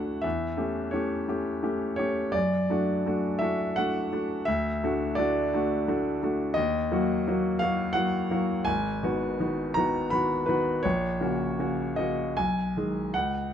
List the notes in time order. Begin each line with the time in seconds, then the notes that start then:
Already playing: D2 A3 D4 F#4 D5 E5 F#5
0.22 E2 E5
0.57 A3 C#4 G4
0.91 A3 C#4 G4 C#5
1.28 A3 C#4 G4
1.63 A3 C#4 G4
1.96 A3 C#4 G4 C#5
2.32 F#2 D5
2.70 A3 D4 F#4
3.06 A3 D4 F#4
3.39 A3 D4 F#4 E5
3.76 A3 D4 F#4 F#5
4.13 A3 D4 F#4
4.45 D2 E5
4.84 A3 D4 F#4
5.15 A3 D4 F#4 D5
5.54 A3 D4 F#4
5.88 A3 D4 F#4
6.23 A3 D4 F#4
6.54 D#2 D#5
6.92 F#3 A#3 F#4
7.27 F#3 A#3 F#4
7.59 F#3 A#3 F#4 F5
7.93 F#3 A#3 F#4 F#5
8.31 F#3 A#3 F#4
8.65 G#1 G#5
9.03 D#3 B3 F#4
9.40 D#3 B3 F#4
9.74 D#3 B3 F#4 A#5
10.10 D#3 B3 F#4 B5
10.46 D#3 B3 F#4 B4
10.83 A#1 C#5
11.21 C#3 A#3 F#4
11.59 C#3 A#3 F#4
11.96 C#3 A#3 F#4 D#5
12.37 B1 G#5
12.77 D#3 G#3 G#4
13.14 C#2 F#5